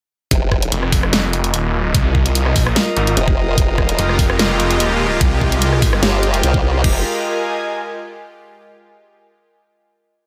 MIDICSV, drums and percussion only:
0, 0, Header, 1, 2, 480
1, 0, Start_track
1, 0, Key_signature, -4, "minor"
1, 0, Tempo, 408163
1, 367, Time_signature, 4, 2, 24, 8
1, 12073, End_track
2, 0, Start_track
2, 0, Title_t, "Drums"
2, 367, Note_on_c, 9, 36, 119
2, 367, Note_on_c, 9, 42, 82
2, 485, Note_off_c, 9, 36, 0
2, 485, Note_off_c, 9, 42, 0
2, 607, Note_on_c, 9, 36, 63
2, 608, Note_on_c, 9, 37, 57
2, 725, Note_off_c, 9, 36, 0
2, 725, Note_off_c, 9, 37, 0
2, 734, Note_on_c, 9, 42, 59
2, 848, Note_off_c, 9, 42, 0
2, 848, Note_on_c, 9, 42, 78
2, 965, Note_off_c, 9, 42, 0
2, 974, Note_on_c, 9, 37, 53
2, 1087, Note_on_c, 9, 36, 103
2, 1088, Note_on_c, 9, 46, 98
2, 1092, Note_off_c, 9, 37, 0
2, 1205, Note_off_c, 9, 36, 0
2, 1205, Note_off_c, 9, 46, 0
2, 1214, Note_on_c, 9, 37, 72
2, 1328, Note_on_c, 9, 38, 123
2, 1328, Note_on_c, 9, 42, 82
2, 1332, Note_off_c, 9, 37, 0
2, 1446, Note_off_c, 9, 38, 0
2, 1446, Note_off_c, 9, 42, 0
2, 1568, Note_on_c, 9, 42, 57
2, 1686, Note_off_c, 9, 42, 0
2, 1694, Note_on_c, 9, 42, 57
2, 1808, Note_off_c, 9, 42, 0
2, 1808, Note_on_c, 9, 42, 84
2, 1925, Note_off_c, 9, 42, 0
2, 2287, Note_on_c, 9, 36, 125
2, 2288, Note_on_c, 9, 42, 84
2, 2405, Note_off_c, 9, 36, 0
2, 2406, Note_off_c, 9, 42, 0
2, 2527, Note_on_c, 9, 36, 66
2, 2645, Note_off_c, 9, 36, 0
2, 2654, Note_on_c, 9, 42, 58
2, 2768, Note_off_c, 9, 42, 0
2, 2768, Note_on_c, 9, 42, 81
2, 2885, Note_off_c, 9, 42, 0
2, 2895, Note_on_c, 9, 37, 52
2, 3007, Note_on_c, 9, 36, 109
2, 3008, Note_on_c, 9, 46, 94
2, 3012, Note_off_c, 9, 37, 0
2, 3125, Note_off_c, 9, 36, 0
2, 3125, Note_off_c, 9, 46, 0
2, 3134, Note_on_c, 9, 37, 78
2, 3247, Note_on_c, 9, 38, 122
2, 3247, Note_on_c, 9, 42, 84
2, 3252, Note_off_c, 9, 37, 0
2, 3365, Note_off_c, 9, 38, 0
2, 3365, Note_off_c, 9, 42, 0
2, 3487, Note_on_c, 9, 42, 54
2, 3605, Note_off_c, 9, 42, 0
2, 3614, Note_on_c, 9, 42, 58
2, 3728, Note_off_c, 9, 42, 0
2, 3728, Note_on_c, 9, 42, 83
2, 3845, Note_off_c, 9, 42, 0
2, 3854, Note_on_c, 9, 36, 105
2, 3971, Note_off_c, 9, 36, 0
2, 4207, Note_on_c, 9, 36, 125
2, 4208, Note_on_c, 9, 42, 82
2, 4325, Note_off_c, 9, 36, 0
2, 4325, Note_off_c, 9, 42, 0
2, 4447, Note_on_c, 9, 36, 65
2, 4448, Note_on_c, 9, 37, 59
2, 4565, Note_off_c, 9, 36, 0
2, 4565, Note_off_c, 9, 37, 0
2, 4574, Note_on_c, 9, 42, 59
2, 4687, Note_off_c, 9, 42, 0
2, 4687, Note_on_c, 9, 42, 77
2, 4805, Note_off_c, 9, 42, 0
2, 4814, Note_on_c, 9, 37, 54
2, 4927, Note_on_c, 9, 36, 109
2, 4927, Note_on_c, 9, 46, 90
2, 4931, Note_off_c, 9, 37, 0
2, 5044, Note_off_c, 9, 36, 0
2, 5045, Note_off_c, 9, 46, 0
2, 5053, Note_on_c, 9, 37, 77
2, 5167, Note_on_c, 9, 38, 127
2, 5167, Note_on_c, 9, 42, 82
2, 5171, Note_off_c, 9, 37, 0
2, 5285, Note_off_c, 9, 38, 0
2, 5285, Note_off_c, 9, 42, 0
2, 5407, Note_on_c, 9, 42, 54
2, 5524, Note_off_c, 9, 42, 0
2, 5534, Note_on_c, 9, 42, 57
2, 5647, Note_off_c, 9, 42, 0
2, 5647, Note_on_c, 9, 42, 82
2, 5765, Note_off_c, 9, 42, 0
2, 6127, Note_on_c, 9, 36, 121
2, 6127, Note_on_c, 9, 42, 81
2, 6244, Note_off_c, 9, 36, 0
2, 6244, Note_off_c, 9, 42, 0
2, 6367, Note_on_c, 9, 36, 65
2, 6484, Note_off_c, 9, 36, 0
2, 6494, Note_on_c, 9, 42, 55
2, 6607, Note_off_c, 9, 42, 0
2, 6607, Note_on_c, 9, 42, 79
2, 6724, Note_off_c, 9, 42, 0
2, 6733, Note_on_c, 9, 37, 54
2, 6847, Note_on_c, 9, 36, 113
2, 6847, Note_on_c, 9, 46, 93
2, 6851, Note_off_c, 9, 37, 0
2, 6964, Note_off_c, 9, 36, 0
2, 6965, Note_off_c, 9, 46, 0
2, 6974, Note_on_c, 9, 37, 80
2, 7087, Note_on_c, 9, 38, 127
2, 7087, Note_on_c, 9, 42, 80
2, 7091, Note_off_c, 9, 37, 0
2, 7205, Note_off_c, 9, 38, 0
2, 7205, Note_off_c, 9, 42, 0
2, 7327, Note_on_c, 9, 42, 54
2, 7444, Note_off_c, 9, 42, 0
2, 7454, Note_on_c, 9, 42, 54
2, 7567, Note_off_c, 9, 42, 0
2, 7567, Note_on_c, 9, 42, 79
2, 7684, Note_off_c, 9, 42, 0
2, 7693, Note_on_c, 9, 36, 107
2, 7811, Note_off_c, 9, 36, 0
2, 8047, Note_on_c, 9, 36, 106
2, 8047, Note_on_c, 9, 49, 90
2, 8164, Note_off_c, 9, 49, 0
2, 8165, Note_off_c, 9, 36, 0
2, 12073, End_track
0, 0, End_of_file